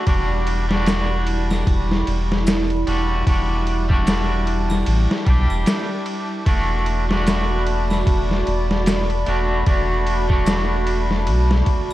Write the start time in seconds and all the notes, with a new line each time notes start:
Already playing: D5
0.06 E1 G3 D4 E4 F#4 B5, kick, ride
0.47 ride
0.69 G3 D4, snare
0.73 F#4
0.86 snare, ride, maracas
1.27 ride
1.51 snare, triangle
1.67 E1, kick, ride
1.91 snare
2.07 E1, ride
2.32 snare
2.47 snare, ride, maracas
2.70 ride
2.87 E1 G3 D4 F#4, ride
3.27 E1 G3 D4 F#4 A5, kick, ride
3.67 ride
3.89 G3 D4, kick
3.93 F#4
4.07 snare, ride, maracas
4.47 ride
4.70 snare, triangle
4.86 A1, ride
5.11 snare
5.25 B1 G3 D4, kick, ride
5.30 G4
5.50 E1, triangle
5.66 snare, ride, maracas
6.06 ride
6.46 E1 A3 D4 F#4 D5 B5, kick, ride
6.86 ride
7.09 A3 D4, snare
7.13 F#4
7.27 snare, ride, maracas
7.67 ride
7.90 snare, triangle
8.07 E1, kick, ride
8.31 snare
8.47 E1, ride
8.71 snare
8.86 snare, ride, maracas
9.10 ride
9.26 E1 A3 D4 F#4, ride
9.66 E1 A3 D4 F#4, kick, ride
10.07 ride
10.29 A3 D4, kick
10.33 F#4
10.46 snare, ride, maracas
10.87 ride
11.11 snare
11.27 B1, ride
11.51 snare
11.66 kick, ride